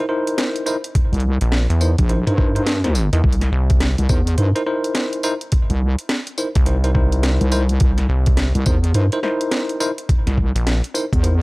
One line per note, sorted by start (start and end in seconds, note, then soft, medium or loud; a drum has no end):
0.09 0.64 D#4 medium
0.09 0.64 E4 medium
0.09 0.64 A#4 medium
0.09 0.64 C5 loud
0.27 closed hi-hat medium
0.38 snare loud
0.38 closed hi-hat medium
0.56 closed hi-hat soft
0.66 0.76 D#4 loud
0.66 0.76 E4 medium
0.66 0.76 A#4 medium
0.66 0.76 C5 loud
0.66 tambourine medium
0.84 closed hi-hat medium
0.95 kick loud
0.95 closed hi-hat medium
1.12 1.38 C2 loud
1.12 closed hi-hat soft
1.20 closed hi-hat soft
1.41 1.67 A#1 medium
1.41 closed hi-hat medium
1.52 snare loud
1.70 1.96 E2 medium
1.70 closed hi-hat soft
1.81 1.90 D#4 medium
1.81 1.90 E4 medium
1.81 1.90 A#4 medium
1.81 1.90 C5 medium
1.81 tambourine medium
1.98 2.24 A#1 loud
1.98 kick loud
1.98 closed hi-hat medium
2.09 2.19 D#4 medium
2.09 2.19 E4 medium
2.09 2.19 A#4 medium
2.09 2.19 C5 loud
2.09 closed hi-hat medium
2.27 3.10 G2 loud
2.27 2.33 D#4 loud
2.27 2.33 E4 medium
2.27 2.33 A#4 medium
2.27 2.33 C5 loud
2.27 closed hi-hat soft
2.38 2.53 D#4 medium
2.38 2.53 E4 medium
2.38 2.53 A#4 medium
2.38 2.53 C5 loud
2.38 kick loud
2.55 2.61 D#4 medium
2.55 2.61 E4 medium
2.55 2.61 A#4 medium
2.55 2.61 C5 loud
2.55 closed hi-hat medium
2.66 snare loud
2.66 closed hi-hat medium
2.84 2.90 D#4 medium
2.84 2.90 E4 medium
2.84 2.90 A#4 medium
2.84 2.90 C5 medium
2.84 snare soft
2.84 closed hi-hat soft
2.95 tambourine medium
3.13 3.22 E2 loud
3.13 3.19 D#4 medium
3.13 3.19 E4 medium
3.13 3.19 A#4 medium
3.13 3.19 D#5 medium
3.13 closed hi-hat medium
3.24 3.50 C2 loud
3.24 kick loud
3.32 closed hi-hat medium
3.41 snare soft
3.41 closed hi-hat soft
3.52 3.96 C2 loud
3.70 kick loud
3.70 closed hi-hat medium
3.80 snare loud
3.80 closed hi-hat medium
3.98 4.08 C2 loud
3.98 closed hi-hat soft
4.09 4.36 E2 loud
4.09 4.19 D#4 medium
4.09 4.19 E4 medium
4.09 4.19 A#4 medium
4.09 4.19 C5 loud
4.09 kick loud
4.09 tambourine medium
4.27 closed hi-hat medium
4.38 4.53 G2 loud
4.38 4.47 D#4 medium
4.38 4.47 E4 medium
4.38 4.47 A#4 medium
4.38 4.47 C5 loud
4.38 closed hi-hat medium
4.56 4.61 D#4 loud
4.56 4.61 E4 medium
4.56 4.61 A#4 medium
4.56 4.61 C5 loud
4.56 closed hi-hat soft
4.66 5.21 D#4 medium
4.66 5.21 E4 medium
4.66 5.21 A#4 medium
4.66 5.21 C5 loud
4.84 closed hi-hat soft
4.95 snare loud
4.95 closed hi-hat medium
5.13 closed hi-hat soft
5.23 5.33 D#4 loud
5.23 5.33 E4 medium
5.23 5.33 A#4 medium
5.23 5.33 C5 loud
5.23 tambourine medium
5.41 closed hi-hat soft
5.52 kick loud
5.52 closed hi-hat medium
5.70 5.96 C2 medium
5.70 closed hi-hat soft
5.98 closed hi-hat soft
6.09 snare loud
6.09 closed hi-hat medium
6.27 closed hi-hat soft
6.38 6.47 D#4 medium
6.38 6.47 E4 medium
6.38 6.47 A#4 medium
6.38 6.47 C5 medium
6.38 tambourine medium
6.55 7.39 C2 loud
6.55 kick loud
6.55 closed hi-hat medium
6.66 6.76 D#4 medium
6.66 6.76 E4 medium
6.66 6.76 A#4 medium
6.66 6.76 C5 loud
6.66 closed hi-hat medium
6.84 6.90 D#4 loud
6.84 6.90 E4 medium
6.84 6.90 A#4 medium
6.84 6.90 C5 loud
6.84 closed hi-hat soft
6.95 7.50 D#4 medium
6.95 7.50 E4 medium
6.95 7.50 A#4 medium
6.95 7.49 C5 loud
6.95 kick loud
7.12 closed hi-hat medium
7.23 snare loud
7.23 closed hi-hat medium
7.41 7.79 C2 loud
7.41 closed hi-hat soft
7.52 7.61 D#4 loud
7.52 7.61 E4 medium
7.52 7.61 A#4 medium
7.52 7.61 C5 loud
7.52 tambourine medium
7.69 closed hi-hat soft
7.80 8.08 C2 loud
7.80 kick loud
7.80 closed hi-hat medium
7.98 snare soft
7.98 closed hi-hat soft
8.09 8.53 C2 medium
8.26 kick loud
8.26 closed hi-hat medium
8.37 snare loud
8.37 closed hi-hat medium
8.55 8.64 C2 loud
8.55 closed hi-hat soft
8.66 8.93 E2 loud
8.66 8.76 D#4 medium
8.66 8.76 E4 medium
8.66 8.76 A#4 medium
8.66 8.76 C5 medium
8.66 kick loud
8.66 tambourine medium
8.84 closed hi-hat medium
8.94 9.10 G2 loud
8.94 9.04 D#4 medium
8.94 9.04 E4 medium
8.94 9.04 A#4 medium
8.94 9.04 C5 loud
8.94 closed hi-hat medium
9.12 9.19 D#4 loud
9.12 9.19 E4 medium
9.12 9.19 A#4 medium
9.12 9.19 C5 loud
9.12 closed hi-hat soft
9.23 9.78 D#4 medium
9.23 9.78 E4 medium
9.23 9.78 A#4 medium
9.23 9.78 C5 loud
9.23 snare soft
9.41 closed hi-hat medium
9.52 snare loud
9.52 closed hi-hat medium
9.69 closed hi-hat soft
9.81 9.90 D#4 loud
9.81 9.90 E4 medium
9.81 9.90 A#4 medium
9.81 9.90 C5 loud
9.81 tambourine medium
9.98 closed hi-hat soft
10.09 kick loud
10.09 closed hi-hat medium
10.27 10.53 C2 loud
10.27 snare soft
10.27 closed hi-hat soft
10.38 kick medium
10.56 10.81 A#1 medium
10.56 closed hi-hat medium
10.67 snare loud
10.67 closed hi-hat medium
10.84 closed hi-hat soft
10.95 11.04 D#4 medium
10.95 11.04 E4 medium
10.95 11.04 A#4 medium
10.95 11.04 C5 loud
10.95 tambourine medium
11.13 11.42 E2 loud
11.13 kick loud
11.13 closed hi-hat medium
11.23 11.33 D#4 medium
11.23 11.33 E4 medium
11.23 11.33 A#4 medium
11.23 11.33 C5 medium
11.23 closed hi-hat medium